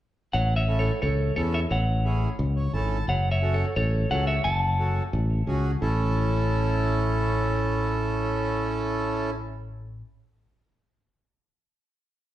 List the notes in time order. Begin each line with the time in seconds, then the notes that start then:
0.33 A1 C#5 F#5
0.56 C#5 E5
0.67 C#4 E4 A4
0.79 A4 C#5
1.02 C#2 A4 C#5
1.36 E2 C#4 E4 A4 C#5
1.54 C#5 E5
1.71 A1 C#5 F#5
2.04 C#4 E4 G#4
2.39 C#2
2.56 C#5
2.73 G#1 C#4 E4 A4 A5
3.08 F#1 C#5 F#5
3.31 C#5 E5
3.42 C#4 F#4 A4
3.54 A4 C#5
3.76 A1 A4 C#5
4.10 C#2 C#4 F#4 A4 C#5 F#5
4.27 C#5 E5
4.44 F#1 F#5 A5
4.79 C#4 F#4 A4
5.13 A1
5.47 C#2 C#4 F#4 G#4
5.81 A1 C#4 E4 A4